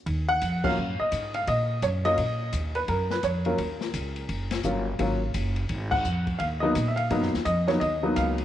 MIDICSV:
0, 0, Header, 1, 5, 480
1, 0, Start_track
1, 0, Key_signature, -6, "minor"
1, 0, Tempo, 351700
1, 91, Time_signature, 4, 2, 24, 8
1, 11531, End_track
2, 0, Start_track
2, 0, Title_t, "Upright piano"
2, 0, Program_c, 0, 0
2, 390, Note_on_c, 0, 78, 118
2, 871, Note_on_c, 0, 54, 69
2, 871, Note_on_c, 0, 61, 60
2, 875, Note_on_c, 0, 65, 74
2, 876, Note_on_c, 0, 77, 114
2, 877, Note_on_c, 0, 58, 63
2, 886, Note_off_c, 0, 78, 0
2, 1032, Note_off_c, 0, 54, 0
2, 1033, Note_off_c, 0, 61, 0
2, 1035, Note_off_c, 0, 58, 0
2, 1035, Note_off_c, 0, 65, 0
2, 1360, Note_on_c, 0, 75, 96
2, 1369, Note_off_c, 0, 77, 0
2, 1803, Note_off_c, 0, 75, 0
2, 1837, Note_on_c, 0, 77, 96
2, 2001, Note_off_c, 0, 77, 0
2, 2022, Note_on_c, 0, 75, 102
2, 2464, Note_off_c, 0, 75, 0
2, 2499, Note_on_c, 0, 73, 88
2, 2567, Note_off_c, 0, 73, 0
2, 2798, Note_on_c, 0, 75, 117
2, 2802, Note_on_c, 0, 54, 64
2, 2802, Note_on_c, 0, 58, 63
2, 2806, Note_on_c, 0, 61, 60
2, 2808, Note_on_c, 0, 65, 72
2, 2958, Note_off_c, 0, 54, 0
2, 2959, Note_off_c, 0, 58, 0
2, 2960, Note_off_c, 0, 61, 0
2, 2962, Note_off_c, 0, 65, 0
2, 3409, Note_off_c, 0, 75, 0
2, 3757, Note_on_c, 0, 71, 87
2, 3825, Note_off_c, 0, 71, 0
2, 3939, Note_on_c, 0, 70, 90
2, 4217, Note_off_c, 0, 70, 0
2, 4247, Note_on_c, 0, 71, 81
2, 4407, Note_off_c, 0, 71, 0
2, 4421, Note_on_c, 0, 73, 85
2, 4489, Note_off_c, 0, 73, 0
2, 4720, Note_on_c, 0, 58, 57
2, 4723, Note_on_c, 0, 54, 65
2, 4725, Note_on_c, 0, 61, 58
2, 4725, Note_on_c, 0, 70, 83
2, 4729, Note_on_c, 0, 65, 74
2, 4878, Note_off_c, 0, 58, 0
2, 4879, Note_off_c, 0, 54, 0
2, 4880, Note_off_c, 0, 61, 0
2, 4883, Note_off_c, 0, 65, 0
2, 6340, Note_on_c, 0, 54, 65
2, 6343, Note_on_c, 0, 58, 59
2, 6345, Note_on_c, 0, 65, 73
2, 6347, Note_on_c, 0, 61, 53
2, 6585, Note_off_c, 0, 70, 0
2, 6608, Note_off_c, 0, 54, 0
2, 6610, Note_off_c, 0, 58, 0
2, 6611, Note_off_c, 0, 65, 0
2, 6612, Note_off_c, 0, 61, 0
2, 6816, Note_on_c, 0, 54, 66
2, 6816, Note_on_c, 0, 58, 57
2, 6823, Note_on_c, 0, 61, 63
2, 6824, Note_on_c, 0, 65, 72
2, 7086, Note_off_c, 0, 54, 0
2, 7086, Note_off_c, 0, 58, 0
2, 7090, Note_off_c, 0, 61, 0
2, 7090, Note_off_c, 0, 65, 0
2, 8067, Note_on_c, 0, 78, 107
2, 8517, Note_off_c, 0, 78, 0
2, 8716, Note_on_c, 0, 77, 97
2, 8786, Note_off_c, 0, 77, 0
2, 9013, Note_on_c, 0, 75, 96
2, 9043, Note_on_c, 0, 54, 74
2, 9046, Note_on_c, 0, 58, 65
2, 9049, Note_on_c, 0, 63, 90
2, 9052, Note_on_c, 0, 59, 75
2, 9199, Note_off_c, 0, 54, 0
2, 9201, Note_off_c, 0, 58, 0
2, 9202, Note_off_c, 0, 63, 0
2, 9204, Note_off_c, 0, 59, 0
2, 9357, Note_off_c, 0, 75, 0
2, 9391, Note_on_c, 0, 76, 74
2, 9500, Note_on_c, 0, 77, 97
2, 9513, Note_off_c, 0, 76, 0
2, 9699, Note_on_c, 0, 54, 69
2, 9705, Note_on_c, 0, 58, 63
2, 9705, Note_on_c, 0, 59, 64
2, 9708, Note_on_c, 0, 63, 82
2, 9953, Note_off_c, 0, 77, 0
2, 9968, Note_off_c, 0, 54, 0
2, 9971, Note_off_c, 0, 58, 0
2, 9971, Note_off_c, 0, 59, 0
2, 9972, Note_off_c, 0, 63, 0
2, 10171, Note_on_c, 0, 75, 97
2, 10477, Note_on_c, 0, 73, 89
2, 10479, Note_on_c, 0, 54, 68
2, 10483, Note_off_c, 0, 75, 0
2, 10484, Note_on_c, 0, 59, 60
2, 10485, Note_on_c, 0, 58, 61
2, 10487, Note_on_c, 0, 63, 78
2, 10545, Note_off_c, 0, 73, 0
2, 10637, Note_off_c, 0, 54, 0
2, 10640, Note_off_c, 0, 59, 0
2, 10641, Note_off_c, 0, 58, 0
2, 10641, Note_off_c, 0, 63, 0
2, 10645, Note_on_c, 0, 75, 96
2, 10960, Note_on_c, 0, 54, 77
2, 10965, Note_on_c, 0, 58, 67
2, 10968, Note_on_c, 0, 63, 77
2, 10969, Note_on_c, 0, 59, 70
2, 11095, Note_off_c, 0, 75, 0
2, 11140, Note_on_c, 0, 77, 93
2, 11531, Note_off_c, 0, 54, 0
2, 11531, Note_off_c, 0, 58, 0
2, 11531, Note_off_c, 0, 59, 0
2, 11531, Note_off_c, 0, 63, 0
2, 11531, Note_off_c, 0, 77, 0
2, 11531, End_track
3, 0, Start_track
3, 0, Title_t, "Upright bass"
3, 0, Program_c, 1, 32
3, 85, Note_on_c, 1, 39, 81
3, 554, Note_off_c, 1, 39, 0
3, 572, Note_on_c, 1, 41, 85
3, 1037, Note_off_c, 1, 41, 0
3, 1052, Note_on_c, 1, 42, 84
3, 1333, Note_off_c, 1, 42, 0
3, 1530, Note_on_c, 1, 44, 89
3, 1997, Note_off_c, 1, 44, 0
3, 2011, Note_on_c, 1, 46, 89
3, 2477, Note_off_c, 1, 46, 0
3, 2489, Note_on_c, 1, 42, 88
3, 2956, Note_off_c, 1, 42, 0
3, 2968, Note_on_c, 1, 46, 81
3, 3436, Note_off_c, 1, 46, 0
3, 3450, Note_on_c, 1, 39, 85
3, 3917, Note_off_c, 1, 39, 0
3, 3933, Note_on_c, 1, 42, 86
3, 4398, Note_off_c, 1, 42, 0
3, 4411, Note_on_c, 1, 41, 85
3, 4878, Note_off_c, 1, 41, 0
3, 4895, Note_on_c, 1, 39, 84
3, 5360, Note_off_c, 1, 39, 0
3, 5373, Note_on_c, 1, 37, 92
3, 5839, Note_off_c, 1, 37, 0
3, 5855, Note_on_c, 1, 30, 81
3, 6320, Note_off_c, 1, 30, 0
3, 6334, Note_on_c, 1, 31, 88
3, 6799, Note_off_c, 1, 31, 0
3, 6807, Note_on_c, 1, 32, 83
3, 7276, Note_off_c, 1, 32, 0
3, 7293, Note_on_c, 1, 30, 84
3, 7758, Note_off_c, 1, 30, 0
3, 7774, Note_on_c, 1, 32, 78
3, 8239, Note_off_c, 1, 32, 0
3, 8252, Note_on_c, 1, 41, 85
3, 8718, Note_off_c, 1, 41, 0
3, 8732, Note_on_c, 1, 39, 80
3, 9198, Note_off_c, 1, 39, 0
3, 9216, Note_on_c, 1, 46, 94
3, 9680, Note_off_c, 1, 46, 0
3, 9697, Note_on_c, 1, 44, 83
3, 9845, Note_off_c, 1, 44, 0
3, 9845, Note_on_c, 1, 42, 59
3, 10009, Note_off_c, 1, 42, 0
3, 10022, Note_on_c, 1, 39, 62
3, 10166, Note_off_c, 1, 39, 0
3, 10176, Note_on_c, 1, 41, 93
3, 10640, Note_off_c, 1, 41, 0
3, 10659, Note_on_c, 1, 39, 87
3, 11122, Note_off_c, 1, 39, 0
3, 11136, Note_on_c, 1, 37, 97
3, 11531, Note_off_c, 1, 37, 0
3, 11531, End_track
4, 0, Start_track
4, 0, Title_t, "Muted upright bass strokes"
4, 1362, Note_on_c, 9, 29, 37
4, 1498, Note_off_c, 9, 29, 0
4, 11531, End_track
5, 0, Start_track
5, 0, Title_t, "Drums"
5, 87, Note_on_c, 9, 51, 69
5, 89, Note_on_c, 9, 36, 22
5, 223, Note_off_c, 9, 51, 0
5, 225, Note_off_c, 9, 36, 0
5, 566, Note_on_c, 9, 44, 54
5, 566, Note_on_c, 9, 51, 74
5, 570, Note_on_c, 9, 36, 24
5, 703, Note_off_c, 9, 44, 0
5, 703, Note_off_c, 9, 51, 0
5, 706, Note_off_c, 9, 36, 0
5, 872, Note_on_c, 9, 36, 90
5, 878, Note_on_c, 9, 49, 83
5, 1009, Note_off_c, 9, 36, 0
5, 1014, Note_off_c, 9, 49, 0
5, 1524, Note_on_c, 9, 44, 54
5, 1524, Note_on_c, 9, 51, 71
5, 1530, Note_on_c, 9, 36, 23
5, 1661, Note_off_c, 9, 44, 0
5, 1661, Note_off_c, 9, 51, 0
5, 1666, Note_off_c, 9, 36, 0
5, 1830, Note_on_c, 9, 51, 50
5, 1967, Note_off_c, 9, 51, 0
5, 2011, Note_on_c, 9, 36, 21
5, 2011, Note_on_c, 9, 51, 70
5, 2147, Note_off_c, 9, 51, 0
5, 2148, Note_off_c, 9, 36, 0
5, 2487, Note_on_c, 9, 44, 62
5, 2487, Note_on_c, 9, 51, 66
5, 2492, Note_on_c, 9, 36, 20
5, 2624, Note_off_c, 9, 44, 0
5, 2624, Note_off_c, 9, 51, 0
5, 2628, Note_off_c, 9, 36, 0
5, 2795, Note_on_c, 9, 51, 47
5, 2932, Note_off_c, 9, 51, 0
5, 2969, Note_on_c, 9, 51, 71
5, 2972, Note_on_c, 9, 36, 27
5, 3106, Note_off_c, 9, 51, 0
5, 3108, Note_off_c, 9, 36, 0
5, 3447, Note_on_c, 9, 44, 62
5, 3447, Note_on_c, 9, 51, 68
5, 3452, Note_on_c, 9, 36, 26
5, 3583, Note_off_c, 9, 44, 0
5, 3583, Note_off_c, 9, 51, 0
5, 3588, Note_off_c, 9, 36, 0
5, 3752, Note_on_c, 9, 51, 51
5, 3888, Note_off_c, 9, 51, 0
5, 3931, Note_on_c, 9, 51, 64
5, 3933, Note_on_c, 9, 36, 27
5, 4067, Note_off_c, 9, 51, 0
5, 4069, Note_off_c, 9, 36, 0
5, 4236, Note_on_c, 9, 38, 49
5, 4373, Note_off_c, 9, 38, 0
5, 4406, Note_on_c, 9, 44, 52
5, 4406, Note_on_c, 9, 51, 66
5, 4411, Note_on_c, 9, 36, 18
5, 4543, Note_off_c, 9, 44, 0
5, 4543, Note_off_c, 9, 51, 0
5, 4548, Note_off_c, 9, 36, 0
5, 4706, Note_on_c, 9, 51, 47
5, 4842, Note_off_c, 9, 51, 0
5, 4889, Note_on_c, 9, 51, 68
5, 4891, Note_on_c, 9, 36, 26
5, 5025, Note_off_c, 9, 51, 0
5, 5028, Note_off_c, 9, 36, 0
5, 5198, Note_on_c, 9, 38, 48
5, 5334, Note_off_c, 9, 38, 0
5, 5371, Note_on_c, 9, 44, 61
5, 5371, Note_on_c, 9, 51, 69
5, 5374, Note_on_c, 9, 36, 19
5, 5508, Note_off_c, 9, 44, 0
5, 5508, Note_off_c, 9, 51, 0
5, 5511, Note_off_c, 9, 36, 0
5, 5676, Note_on_c, 9, 51, 50
5, 5813, Note_off_c, 9, 51, 0
5, 5852, Note_on_c, 9, 51, 65
5, 5854, Note_on_c, 9, 36, 26
5, 5989, Note_off_c, 9, 51, 0
5, 5990, Note_off_c, 9, 36, 0
5, 6151, Note_on_c, 9, 51, 76
5, 6157, Note_on_c, 9, 38, 63
5, 6288, Note_off_c, 9, 51, 0
5, 6293, Note_off_c, 9, 38, 0
5, 6324, Note_on_c, 9, 44, 64
5, 6331, Note_on_c, 9, 36, 23
5, 6460, Note_off_c, 9, 44, 0
5, 6468, Note_off_c, 9, 36, 0
5, 6810, Note_on_c, 9, 51, 69
5, 6813, Note_on_c, 9, 36, 26
5, 6946, Note_off_c, 9, 51, 0
5, 6950, Note_off_c, 9, 36, 0
5, 7289, Note_on_c, 9, 44, 51
5, 7289, Note_on_c, 9, 51, 76
5, 7293, Note_on_c, 9, 36, 27
5, 7426, Note_off_c, 9, 44, 0
5, 7426, Note_off_c, 9, 51, 0
5, 7430, Note_off_c, 9, 36, 0
5, 7590, Note_on_c, 9, 51, 49
5, 7726, Note_off_c, 9, 51, 0
5, 7767, Note_on_c, 9, 51, 68
5, 7772, Note_on_c, 9, 36, 28
5, 7903, Note_off_c, 9, 51, 0
5, 7908, Note_off_c, 9, 36, 0
5, 8075, Note_on_c, 9, 36, 89
5, 8076, Note_on_c, 9, 49, 80
5, 8211, Note_off_c, 9, 36, 0
5, 8213, Note_off_c, 9, 49, 0
5, 8250, Note_on_c, 9, 44, 56
5, 8387, Note_off_c, 9, 44, 0
5, 8555, Note_on_c, 9, 51, 50
5, 8556, Note_on_c, 9, 36, 52
5, 8692, Note_off_c, 9, 36, 0
5, 8692, Note_off_c, 9, 51, 0
5, 8729, Note_on_c, 9, 51, 69
5, 8733, Note_on_c, 9, 36, 25
5, 8866, Note_off_c, 9, 51, 0
5, 8870, Note_off_c, 9, 36, 0
5, 9214, Note_on_c, 9, 44, 55
5, 9214, Note_on_c, 9, 51, 78
5, 9216, Note_on_c, 9, 36, 27
5, 9351, Note_off_c, 9, 44, 0
5, 9351, Note_off_c, 9, 51, 0
5, 9353, Note_off_c, 9, 36, 0
5, 9516, Note_on_c, 9, 51, 53
5, 9652, Note_off_c, 9, 51, 0
5, 9696, Note_on_c, 9, 51, 69
5, 9697, Note_on_c, 9, 36, 25
5, 9832, Note_off_c, 9, 51, 0
5, 9834, Note_off_c, 9, 36, 0
5, 9861, Note_on_c, 9, 38, 30
5, 9997, Note_off_c, 9, 38, 0
5, 10017, Note_on_c, 9, 38, 50
5, 10154, Note_off_c, 9, 38, 0
5, 10173, Note_on_c, 9, 44, 61
5, 10173, Note_on_c, 9, 51, 66
5, 10178, Note_on_c, 9, 36, 21
5, 10309, Note_off_c, 9, 44, 0
5, 10309, Note_off_c, 9, 51, 0
5, 10314, Note_off_c, 9, 36, 0
5, 10483, Note_on_c, 9, 51, 48
5, 10488, Note_on_c, 9, 38, 38
5, 10619, Note_off_c, 9, 51, 0
5, 10625, Note_off_c, 9, 38, 0
5, 10661, Note_on_c, 9, 36, 24
5, 10661, Note_on_c, 9, 51, 68
5, 10797, Note_off_c, 9, 51, 0
5, 10798, Note_off_c, 9, 36, 0
5, 11139, Note_on_c, 9, 44, 67
5, 11139, Note_on_c, 9, 51, 76
5, 11140, Note_on_c, 9, 36, 20
5, 11276, Note_off_c, 9, 44, 0
5, 11276, Note_off_c, 9, 51, 0
5, 11277, Note_off_c, 9, 36, 0
5, 11438, Note_on_c, 9, 51, 51
5, 11531, Note_off_c, 9, 51, 0
5, 11531, End_track
0, 0, End_of_file